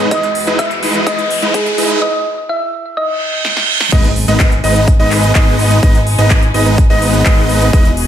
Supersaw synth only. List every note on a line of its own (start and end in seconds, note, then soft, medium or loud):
0.11 0.26 G#3 medium
0.11 0.26 D#4 medium
0.11 0.26 E4 medium
0.11 0.26 B4 medium
0.11 0.26 D#5 loud
0.47 0.71 G#3 medium
0.47 0.71 D#4 medium
0.47 0.71 E4 medium
0.47 0.71 B4 medium
0.47 0.71 D#5 medium
0.83 1.05 G#3 medium
0.83 1.05 D#4 medium
0.83 1.05 E4 medium
0.83 1.05 B4 medium
0.83 1.05 D#5 medium
1.07 1.21 G#3 medium
1.07 1.21 D#4 medium
1.07 1.21 E4 medium
1.07 1.21 B4 medium
1.07 1.21 D#5 medium
1.42 1.66 G#3 medium
1.42 1.66 D#4 medium
1.42 1.66 E4 medium
1.42 1.66 B4 medium
1.42 1.66 D#5 medium
1.78 2.00 G#3 medium
1.78 2.00 D#4 medium
1.78 2.00 E4 medium
1.78 2.00 B4 medium
1.78 2.00 D#5 medium
3.92 4.07 G#3 medium
3.92 4.07 B3 medium
3.92 4.07 D#4 medium
3.92 4.07 B4 medium
3.92 4.07 D#5 loud
4.28 4.52 G#3 medium
4.28 4.52 B3 medium
4.28 4.52 D#4 medium
4.28 4.52 B4 medium
4.28 4.52 D#5 medium
4.64 4.87 G#3 medium
4.64 4.87 B3 medium
4.64 4.87 D#4 medium
4.64 4.87 B4 medium
4.64 4.87 D#5 medium
5.00 5.32 G#3 medium
5.00 5.32 B3 medium
5.00 5.32 D#4 medium
5.00 5.32 B4 medium
5.00 5.32 D#5 loud
5.35 5.80 G#3 loud
5.83 5.98 G#3 loud
5.83 5.98 B3 medium
5.83 5.98 D#4 medium
5.83 5.98 B4 medium
5.83 5.98 D#5 loud
6.19 6.42 G#3 medium
6.19 6.42 B3 medium
6.19 6.42 D#4 medium
6.19 6.42 B4 medium
6.19 6.42 D#5 medium
6.54 6.78 G#3 medium
6.54 6.78 B3 medium
6.54 6.78 D#4 medium
6.54 6.78 B4 medium
6.54 6.78 D#5 medium
6.90 7.23 G#3 medium
6.90 7.23 B3 medium
6.90 7.23 D#4 medium
6.90 7.23 B4 medium
6.90 7.23 D#5 loud
7.26 7.70 G#3 loud
7.26 7.70 B3 medium
7.26 7.70 B4 medium
7.73 7.88 G#3 medium
7.73 7.88 D#4 medium
7.73 7.88 E4 medium
7.73 7.88 B4 medium
7.73 7.88 D#5 loud